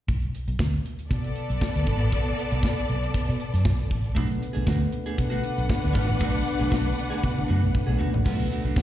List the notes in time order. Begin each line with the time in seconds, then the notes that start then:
0.08 B1, kick, closed hi-hat
0.22 closed hi-hat
0.35 closed hi-hat
0.48 B1, closed hi-hat
0.59 D2, kick, snare
0.73 closed hi-hat
0.86 closed hi-hat
0.99 closed hi-hat
1.11 B2 B3 A4 D5, kick, closed hi-hat
1.24 closed hi-hat
1.35 closed hi-hat
1.50 B1, closed hi-hat
1.61 kick, snare
1.75 D2, closed hi-hat
1.86 G#1, kick, closed hi-hat
2.00 A1, closed hi-hat
2.12 B1, kick, closed hi-hat
2.26 closed hi-hat
2.39 closed hi-hat
2.51 B1, closed hi-hat
2.63 kick, snare
2.77 closed hi-hat
2.89 B1, closed hi-hat
3.03 closed hi-hat
3.14 kick, closed hi-hat
3.28 B2, closed hi-hat
3.40 closed hi-hat
3.54 F#2, snare, closed hi-hat
3.65 B1, kick, snare
3.79 closed hi-hat
3.91 A1, kick, closed hi-hat
4.04 closed hi-hat
4.15 B1 D3 A3 B3 D4 F#4, kick, closed hi-hat
4.29 muted clean electric guitar stroke, closed hi-hat
4.41 muted clean electric guitar stroke, closed hi-hat
4.53 B1 A3 D4 G#4, closed hi-hat
4.66 D2 A3 D4 F#4, kick, snare
4.80 muted clean electric guitar stroke, closed hi-hat
4.92 muted clean electric guitar stroke, closed hi-hat
5.06 A3 D4 G#4, closed hi-hat
5.17 B2 D4 B4 F#5, muted clean electric guitar stroke, kick, closed hi-hat
5.30 A3 D4 F#4, closed hi-hat
5.43 muted clean electric guitar stroke, closed hi-hat
5.57 B1, muted clean electric guitar stroke, closed hi-hat
5.69 muted clean electric guitar stroke, kick, snare
5.82 D2, muted clean electric guitar stroke, closed hi-hat
5.93 G#1 A3 D4 F#4, kick, closed hi-hat
6.08 A1, muted clean electric guitar stroke, closed hi-hat
6.19 B1 A3 D4 F#4, kick, closed hi-hat
6.32 muted clean electric guitar stroke, closed hi-hat
6.44 muted clean electric guitar stroke, closed hi-hat
6.58 B1 A3 D4 G#4, closed hi-hat
6.70 B1 A3 D4 F#4, kick, snare
6.85 muted clean electric guitar stroke, closed hi-hat
6.96 muted clean electric guitar stroke, closed hi-hat
7.10 A3 D4 G#4, closed hi-hat
7.23 B2, muted clean electric guitar stroke, kick, high tom
7.37 muted clean electric guitar stroke, high tom
7.48 F#2 A3 D4 F#4
7.62 B1, muted clean electric guitar stroke
7.74 B2, muted clean electric guitar stroke, kick
7.86 B1 A3 D4 G#4
7.98 A3 D4 F#4, floor tom
8.12 A1, muted clean electric guitar stroke, floor tom
8.24 B1 D3 A3 B3 D4 F#4, kick, crash
8.40 closed hi-hat
8.51 A3 D4 F#4, closed hi-hat
8.64 B1 A3 D4 F#4, closed hi-hat
8.76 D2, muted clean electric guitar stroke, kick, snare